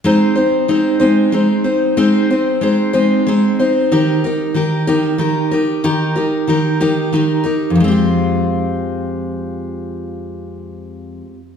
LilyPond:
\new Staff \with { instrumentName = "Steel-string acoustic guitar" } { \time 6/8 \key f \minor \tempo 4. = 62 <aes c' ees' c''>8 <c' ees' c''>8 <aes c' ees' c''>8 <aes c' ees' c''>8 <aes c' ees' c''>8 <c' ees' c''>8 | <aes c' ees' c''>8 <c' ees' c''>8 <aes c' ees' c''>8 <aes c' ees' c''>8 <aes c' ees' c''>8 <c' ees' c''>8 | <ees ees' g' bes'>8 <ees' g' bes'>8 <ees ees' g' bes'>8 <ees ees' g' bes'>8 <ees ees' g' bes'>8 <ees' g' bes'>8 | <ees ees' g' bes'>8 <ees' g' bes'>8 <ees ees' g' bes'>8 <ees ees' g' bes'>8 <ees ees' g' bes'>8 <ees' g' bes'>8 |
<f, f aes c' f' g'>2.~ | <f, f aes c' f' g'>2. | }